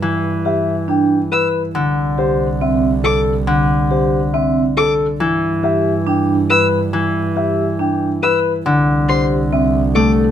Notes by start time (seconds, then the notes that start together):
Already playing: G2
0.02 E3
0.45 G4 E5
0.88 D4 G5
1.32 B4 E6
1.75 C2 D3
2.18 G4 C5
2.61 C4 E5
3.04 A4 D6
3.47 D3
3.91 G4 C5
4.34 C4 E5
4.77 A4 D6
5.20 G2 E3
5.63 G4 E5
6.07 D4 G5
6.50 B4 E6
6.93 E3
7.36 G4 E5
7.79 D4 G5
8.23 B4 E6
8.66 C2 D3
9.09 G4 C5 C6
9.52 C4 E5
9.95 A3 A4 D6